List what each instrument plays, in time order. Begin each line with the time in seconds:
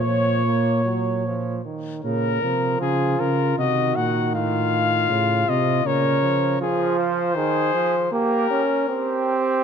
Already playing: tuba A#2, cornet C#5, flugelhorn C#5
0.05 trombone F3
0.45 trombone A#3
0.85 trombone F#3
1.26 trombone F3
1.65 trombone D#3
2.04 tuba A#2, trombone C#3, cornet A#4, flugelhorn A#4
2.42 tuba C3, trombone F3
2.81 tuba C#3, flugelhorn F4, cornet G#4
3.20 tuba C#3, cornet A#4
3.58 tuba C3, trombone D#3, flugelhorn F#4, cornet D#5
3.96 tuba A#2, cornet F#5
4.33 tuba A2, flugelhorn F4, cornet F5
5.10 tuba A2, trombone C#3
5.48 trombone C3, tuba C3, cornet D#5
5.84 trombone A#2, tuba C#3, flugelhorn A#4, cornet C#5
6.22 trombone F3
6.60 trombone F3, flugelhorn F4, cornet G#4
6.99 cornet C5
7.36 trombone D#3, flugelhorn G#4
7.74 trombone F3
8.12 trombone A#3, flugelhorn G4, cornet A#4
8.50 trombone C#4
8.89 trombone C4, flugelhorn G4